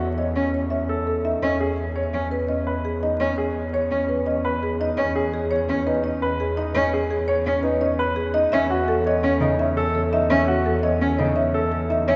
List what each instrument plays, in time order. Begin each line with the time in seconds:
Already playing: double bass E2
0.18 grand piano C#5, marimba D#5
0.36 grand piano C#4, cello C#4
0.54 marimba C#5
0.70 grand piano C#4, marimba E5
0.89 grand piano A4
1.07 marimba A4
1.25 grand piano D#4, marimba E5
1.43 double bass E2, cello C#4, grand piano C#4, marimba D#5
1.60 grand piano G#4
1.96 grand piano C#5, marimba C#5
2.14 cello C#4, grand piano C#4
2.31 marimba B4
2.49 grand piano C#4, marimba D#5
2.67 grand piano B4
2.85 marimba G#4
3.03 grand piano D#4, marimba D#5
3.20 cello C#4, grand piano C#4, marimba D#5
3.38 grand piano G#4
3.73 grand piano C#5, marimba C#5
3.91 cello C#4, grand piano C#4
4.09 marimba B4
4.26 grand piano C#4, marimba D#5
4.45 grand piano B4
4.63 marimba G#4
4.80 grand piano D#4, marimba D#5
4.97 cello C#4, grand piano C#4, marimba D#5
5.15 grand piano G#4
5.34 marimba G#4
5.51 marimba C#5, grand piano C#5
5.69 grand piano C#4, cello C#4
5.87 grand piano D#4, marimba B4
6.04 grand piano C#4, marimba D#5
6.22 grand piano B4
6.40 marimba G#4
6.57 grand piano D#4, marimba D#5
6.75 cello C#4, grand piano C#4, marimba D#5
6.93 grand piano G#4
7.11 marimba G#4
7.28 marimba C#5, grand piano C#5
7.46 grand piano C#4, cello C#4
7.63 grand piano D#4, marimba B4
7.81 grand piano C#4, marimba D#5
7.99 grand piano B4
8.16 marimba G#4
8.34 grand piano D#4, marimba D#5
8.52 double bass E2, cello C#4, grand piano C#4, marimba E5
8.70 grand piano F#4
8.88 marimba A4
9.06 grand piano C#5, marimba D#5
9.23 cello C#4, grand piano C#4
9.41 cello C#3, grand piano D#4, marimba C#5
9.59 grand piano C#4, marimba E5
9.77 grand piano A4
9.95 marimba A4
10.13 grand piano D#4, marimba E5
10.30 cello C#4, grand piano C#4, marimba E5
10.48 grand piano F#4
10.66 marimba A4
10.83 grand piano C#5, marimba D#5
11.01 grand piano C#4, cello C#4
11.19 cello C#3, grand piano D#4, marimba C#5
11.36 grand piano C#4, marimba E5
11.54 grand piano A4
11.72 marimba A4
11.90 grand piano D#4, marimba E5
12.08 grand piano C#4, cello C#4, marimba E5